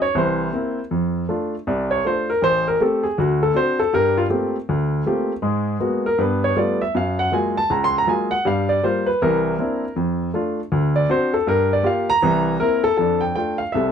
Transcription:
0.02 0.15 C#5 medium
0.15 0.47 C2 medium
0.15 0.48 E3 medium
0.15 0.81 C5 medium
0.53 0.78 A#3 medium
0.53 0.78 C4 medium
0.53 0.79 E4 medium
0.91 1.23 F2 medium
1.29 1.54 A3 medium
1.29 1.54 D4 medium
1.29 1.54 F4 medium
1.67 1.99 C2 medium
1.67 1.90 D5 medium
1.91 2.04 C#5 medium
2.05 2.30 A3 medium
2.05 2.30 D4 soft
2.05 2.30 F4 medium
2.05 2.28 C5 medium
2.30 2.42 A#4 medium
2.42 2.74 A1 medium
2.42 2.66 C5 loud
2.68 2.80 A#4 medium
2.81 3.05 A3 medium
2.81 3.05 C4 medium
2.81 3.06 G4 medium
2.81 3.03 A4 medium
3.03 3.17 G#4 medium
3.18 3.50 D2 medium
3.18 3.42 F#4 medium
3.43 3.55 A4 medium
3.55 3.80 C4 medium
3.55 3.80 D4 soft
3.55 3.80 F#4 medium
3.55 3.79 C5 loud
3.79 3.93 A4 medium
3.93 4.26 G2 medium
3.93 4.25 G3 medium
3.93 4.17 A#4 loud
4.18 4.25 F4 medium
4.30 4.55 A3 medium
4.30 4.55 A#3 medium
4.30 4.56 C4 medium
4.30 4.55 F4 medium
4.30 4.56 G4 medium
4.69 5.01 D2 medium
5.06 5.31 A3 medium
5.06 5.31 A#3 medium
5.06 5.31 C4 medium
5.06 5.31 F4 medium
5.06 5.32 G4 medium
5.42 5.75 G#2 medium
5.42 5.75 G#3 medium
5.80 6.06 G#3 medium
5.80 6.06 A#3 medium
5.80 6.06 B3 medium
5.80 6.06 F#4 medium
6.06 6.19 A#4 medium
6.18 6.51 G2 medium
6.18 6.51 B3 medium
6.18 6.43 B4 medium
6.44 6.57 C#5 medium
6.56 6.81 G3 medium
6.56 6.81 A3 medium
6.56 6.82 B3 medium
6.56 6.82 F4 medium
6.56 6.80 D5 medium
6.81 6.94 E5 medium
6.95 7.27 F#2 medium
6.95 7.19 F5 medium
7.19 7.32 F#5 medium
7.32 7.57 F#3 medium
7.32 7.57 G#3 medium
7.32 7.58 A#3 medium
7.32 7.58 F4 medium
7.32 7.56 G#5 medium
7.57 7.70 A5 loud
7.70 8.02 C#2 medium
7.70 7.83 A#5 medium
7.84 7.95 C6 loud
7.98 8.09 A#5 medium
8.07 8.32 F#3 medium
8.07 8.32 G#3 medium
8.07 8.33 A#3 medium
8.07 8.33 F4 medium
8.07 8.31 G#5 medium
8.31 8.44 F#5 medium
8.45 8.78 G2 medium
8.45 8.78 G3 medium
8.45 8.69 F5 medium
8.69 8.82 D5 medium
8.83 9.08 G3 medium
8.83 9.09 A#3 medium
8.83 9.09 F4 medium
8.83 9.06 C5 medium
9.06 9.20 B4 medium
9.22 9.54 C2 medium
9.22 9.54 E3 medium
9.22 9.93 A#4 medium
9.59 9.84 A#3 medium
9.59 9.84 C4 medium
9.59 9.84 D4 medium
9.59 9.84 E4 medium
9.96 10.28 F2 medium
10.34 10.59 A3 medium
10.34 10.59 D4 medium
10.34 10.59 F4 medium
10.72 11.04 D2 medium
10.96 11.09 D5 medium
11.09 11.34 C4 medium
11.09 11.35 D4 medium
11.09 11.35 F#4 medium
11.09 11.33 C5 medium
11.34 11.47 A4 medium
11.47 11.79 G2 medium
11.47 11.71 A#4 medium
11.73 11.85 D5 medium
11.83 12.09 A#3 medium
11.83 12.09 F4 medium
11.83 12.10 G4 medium
11.83 12.09 F5 medium
12.10 12.87 A#5 loud
12.22 12.55 C2 medium
12.22 12.55 E3 medium
12.60 12.86 A#3 medium
12.60 12.86 C4 medium
12.60 12.86 E4 medium
12.60 12.82 A#4 medium
12.84 12.96 A4 loud
12.97 13.31 F2 medium
12.97 13.36 D4 medium
12.97 13.22 A4 medium
13.21 13.34 G5 medium
13.35 13.61 A3 medium
13.35 13.62 D4 soft
13.35 13.61 F4 medium
13.35 13.58 G5 medium
13.58 13.73 F5 medium
13.72 13.92 C2 medium
13.72 13.92 C3 medium
13.72 13.92 A4 medium
13.72 13.92 E5 medium

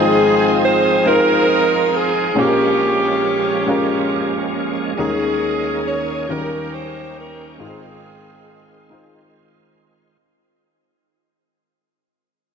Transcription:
0.00 2.33 G#1 medium
0.00 2.33 G#2 soft
0.00 2.32 F3 medium
0.00 0.79 G#3 medium
0.00 1.02 C4 medium
0.00 2.35 C4 medium
0.00 0.79 D#4 medium
0.00 2.32 D#4 soft
0.00 0.80 F4 medium
0.00 1.02 F4 medium
0.00 0.58 G#4 medium
0.00 2.32 G#4 medium
0.00 0.83 C5 medium
0.63 1.06 C5 medium
1.05 2.09 G#3 medium
1.05 2.09 D#4 medium
1.05 2.33 D#4 medium
1.05 2.10 F4 soft
1.05 2.33 F4 medium
1.05 1.94 A#4 medium
1.05 2.10 C5 medium
1.95 2.37 G#4 medium
2.35 4.94 A#1 soft
2.35 4.94 A#2 medium
2.35 4.94 F3 medium
2.35 3.39 G#3 medium
2.35 4.94 A#3 soft
2.35 3.40 C#4 medium
2.35 4.94 C#4 soft
2.35 4.51 C#4 medium
2.35 3.40 F4 medium
2.35 2.43 G4 soft
2.35 2.43 G#4 medium
2.39 4.97 G#3 medium
2.39 4.56 G4 medium
2.44 3.44 A#4 medium
3.66 4.70 G#3 medium
3.66 4.71 C#4 medium
3.66 4.71 F4 medium
3.66 4.72 A#4 medium
4.97 6.25 D#2 soft
4.97 6.28 D#3 medium
4.97 6.25 D#3 medium
4.97 5.04 G3 medium
4.97 6.28 A#3 medium
4.97 6.28 C#4 medium
4.97 6.02 C#4 medium
4.97 6.25 C#4 medium
4.97 6.02 D#4 medium
4.97 6.28 G#4 medium
4.97 5.82 G#4 medium
4.97 6.03 A#4 medium
5.04 6.05 G#3 medium
5.86 6.29 C#5 medium
6.28 7.56 D#2 medium
6.28 7.59 D#3 medium
6.28 7.57 D#3 medium
6.28 6.35 F#3 soft
6.28 7.60 A#3 soft
6.28 7.60 C#4 soft
6.28 7.33 C#4 medium
6.28 7.57 C#4 medium
6.28 7.33 D#4 soft
6.28 7.59 G4 medium
6.28 7.57 G4 medium
6.28 6.73 A#4 medium
6.28 7.34 A#4 medium
6.36 7.36 G3 medium
6.74 7.17 C5 medium
7.18 7.58 A#4 medium
7.58 10.17 G#1 medium
7.58 10.17 G#2 medium
7.58 10.17 D#3 medium
7.58 8.62 G#3 medium
7.58 10.17 G#3 soft
7.58 10.18 C4 soft
7.58 8.63 D#4 medium
7.58 8.63 F4 medium
7.58 10.18 F4 medium
7.58 7.67 A#4 medium
7.62 9.31 C4 medium
7.62 9.32 F4 soft
7.62 9.36 G#4 medium
7.68 8.67 C5 medium
8.90 9.94 G#3 medium
8.90 9.94 D#4 medium
8.90 9.94 F4 medium
8.90 9.95 C5 medium

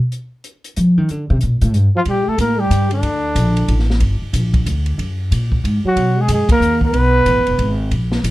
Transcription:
0.12 closed hi-hat soft
0.44 closed hi-hat soft
0.64 closed hi-hat soft
0.76 0.98 F3 medium
0.76 closed hi-hat soft
0.98 1.10 D#3 loud
1.09 1.29 D3 medium
1.09 closed hi-hat soft
1.30 1.41 C3 loud
1.41 1.61 A#2 medium
1.41 closed hi-hat soft
1.61 1.75 A2 medium
1.61 closed hi-hat soft
1.74 1.87 G2 medium
1.74 closed hi-hat soft
1.96 2.01 F3 medium
1.96 2.02 F4 medium
2.05 2.25 A#2 medium
2.05 2.28 G3 medium
2.05 kick soft
2.05 ride soft
2.10 2.30 G4 medium
2.26 2.38 A3 medium
2.26 2.40 A4 medium
2.26 muted upright bass stroke soft
2.38 2.69 A2 medium
2.38 2.60 A#3 medium
2.38 2.61 A#4 medium
2.38 kick soft
2.38 hi-hat pedal soft
2.38 ride medium
2.59 2.91 G3 medium
2.59 2.92 G4 medium
2.70 3.02 G2 medium
2.70 kick soft
2.70 hi-hat pedal medium
2.70 ride medium
2.91 3.85 D3 medium
2.91 3.86 D4 medium
2.91 ride soft
3.02 3.34 D2 medium
3.02 kick soft
3.02 ride medium
3.35 3.67 A#1 medium
3.35 kick soft
3.35 hi-hat pedal soft
3.35 ride medium
3.57 ride soft
3.68 4.00 A1 medium
3.68 kick soft
3.68 ride medium
3.79 snare soft
3.90 snare soft
4.00 4.19 G1 medium
4.00 kick soft
4.00 ride medium
4.22 muted upright bass stroke soft
4.33 4.64 A#1 medium
4.33 kick soft
4.33 hi-hat pedal medium
4.33 ride medium
4.54 kick medium
4.54 ride soft
4.66 4.97 D2 medium
4.66 kick soft
4.66 hi-hat pedal medium
4.66 ride medium
4.86 ride soft
4.98 5.29 F#2 medium
4.98 kick soft
4.98 ride soft
5.31 5.62 A#2 medium
5.31 kick soft
5.31 hi-hat pedal soft
5.31 ride medium
5.52 kick soft
5.64 5.82 G#2 medium
5.64 kick soft
5.64 ride medium
5.84 6.20 F#3 medium
5.84 6.23 F#4 medium
5.84 muted upright bass stroke soft
5.96 6.27 B2 medium
5.96 kick soft
5.96 ride medium
6.18 6.29 G#3 medium
6.18 6.31 G#4 medium
6.28 6.47 F#2 medium
6.28 6.48 G#3 medium
6.28 kick soft
6.28 hi-hat pedal medium
6.28 ride medium
6.34 6.50 G#4 medium
6.48 6.80 A#3 medium
6.48 6.81 A#4 medium
6.48 muted upright bass stroke soft
6.48 kick medium
6.48 ride medium
6.60 6.92 D#2 medium
6.60 hi-hat pedal medium
6.81 7.76 B3 medium
6.81 kick soft
6.86 7.77 B4 loud
6.93 7.25 B1 medium
6.93 kick soft
6.93 ride soft
7.26 7.38 A1 medium
7.26 kick soft
7.26 hi-hat pedal soft
7.26 ride medium
7.36 7.47 F#1 soft
7.47 7.57 D#1 medium
7.47 ride soft
7.58 7.90 G#1 medium
7.58 kick soft
7.58 ride medium
7.91 8.22 A#1 medium
7.91 kick soft
7.91 ride soft
8.12 snare soft
8.23 8.31 A1 medium
8.23 kick soft
8.23 hi-hat pedal medium
8.23 ride medium

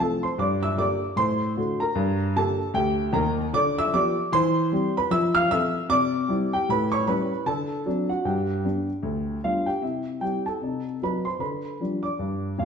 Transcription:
0.00 0.21 F3 medium
0.00 0.21 A3 soft
0.00 0.22 C4 medium
0.00 0.23 A4 medium
0.00 0.23 A5 medium
0.23 0.39 C5 medium
0.23 0.39 C6 medium
0.38 0.72 G2 medium
0.38 0.62 D5 medium
0.38 0.63 D6 medium
0.63 0.78 E5 medium
0.63 0.78 E6 medium
0.77 0.99 D3 soft
0.77 0.99 A#3 soft
0.77 1.00 G4 medium
0.77 1.16 D5 medium
0.77 1.18 D6 medium
1.16 1.50 A2 medium
1.16 1.77 C5 medium
1.16 1.80 C6 loud
1.57 1.79 D3 medium
1.57 1.79 A3 medium
1.57 1.79 F#4 medium
1.80 2.32 A#4 medium
1.80 2.35 A#5 medium
1.95 2.29 G2 medium
2.36 2.58 D3 medium
2.36 2.58 A#3 medium
2.36 2.58 G4 medium
2.36 2.73 A4 medium
2.36 2.75 A5 medium
2.74 3.08 D2 medium
2.74 3.12 G4 medium
2.74 3.14 G5 loud
3.13 3.45 D#2 medium
3.13 3.45 D#3 medium
3.13 3.36 A#4 medium
3.13 3.37 A#5 medium
3.53 3.87 D3 medium
3.53 3.76 D5 medium
3.53 3.77 D6 loud
3.78 3.93 E5 medium
3.78 3.93 E6 loud
3.93 4.14 F3 medium
3.93 4.15 B3 medium
3.93 4.15 G4 medium
3.93 4.30 D5 medium
3.93 4.32 D6 loud
4.32 4.66 E3 loud
4.32 4.92 C5 medium
4.32 4.95 C6 loud
4.72 4.93 G3 medium
4.72 4.93 C4 medium
4.72 4.94 G4 medium
4.97 5.11 B4 medium
4.97 5.12 B5 medium
5.10 5.44 F3 medium
5.10 5.33 E5 medium
5.10 5.34 E6 loud
5.35 5.50 F5 medium
5.35 5.50 F6 loud
5.50 5.72 F3 medium
5.50 5.72 C4 medium
5.50 5.73 A4 medium
5.50 5.88 E5 medium
5.50 5.90 E6 loud
5.89 6.22 C3 loud
5.89 6.49 D5 medium
5.89 6.52 D6 loud
6.28 6.50 G3 medium
6.28 6.51 C4 medium
6.28 6.51 E4 medium
6.53 6.68 G4 medium
6.53 6.68 G5 medium
6.69 7.02 A2 medium
6.69 6.92 B4 medium
6.69 6.92 B5 loud
6.92 7.07 C#5 medium
6.92 7.07 C#6 medium
7.07 7.28 G3 medium
7.07 7.28 C#4 medium
7.07 7.29 E4 medium
7.07 7.44 B4 medium
7.07 7.46 B5 medium
7.46 7.79 D3 medium
7.46 8.06 A4 medium
7.46 8.09 A5 medium
7.86 8.07 F#3 soft
7.86 8.08 C4 medium
7.86 8.08 D4 medium
8.09 8.25 F#4 medium
8.09 8.25 F#5 medium
8.25 8.58 G2 medium
8.25 9.64 G4 medium
8.25 9.65 G5 medium
8.64 8.86 G3 soft
8.64 8.86 B3 soft
8.64 8.86 D4 medium
9.03 9.36 D2 medium
9.43 9.65 G3 soft
9.43 9.65 B3 soft
9.43 9.66 D4 soft
9.43 9.66 F4 medium
9.43 9.67 F5 medium
9.66 9.81 G4 medium
9.66 9.82 G5 medium
9.81 10.15 C3 soft
9.81 10.20 E4 soft
9.81 10.22 E5 medium
10.20 10.43 G3 soft
10.20 10.42 C4 soft
10.20 10.43 E4 soft
10.20 10.44 G4 medium
10.20 10.45 G5 medium
10.46 10.98 A4 soft
10.46 11.01 A5 medium
10.61 10.95 C3 medium
10.61 10.85 D#4 soft
11.02 11.23 F#3 soft
11.02 11.23 C4 soft
11.02 11.24 D#4 soft
11.02 11.24 B4 medium
11.02 11.26 B5 medium
11.25 11.40 C5 soft
11.25 11.40 C6 medium
11.39 11.73 D3 medium
11.39 12.00 B4 soft
11.39 12.03 B5 medium
11.80 12.02 F3 soft
11.80 12.02 G3 soft
11.80 12.02 D4 soft
12.03 12.55 D5 medium
12.03 12.58 D6 medium
12.19 12.53 G2 medium
12.58 12.65 D#1 medium
12.58 12.65 D#2 medium
12.58 12.65 F4 medium
12.58 12.65 F5 medium

